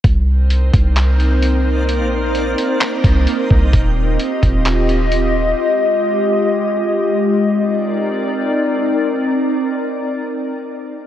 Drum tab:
HH |x-xxxxx-|x-xxxxx-|x-xxxxx-|--------|
CP |----x---|----x---|----x---|--------|
BD |o--o----|-----o-o|o--o----|--------|

HH |--------|--------|
CP |--------|--------|
BD |--------|--------|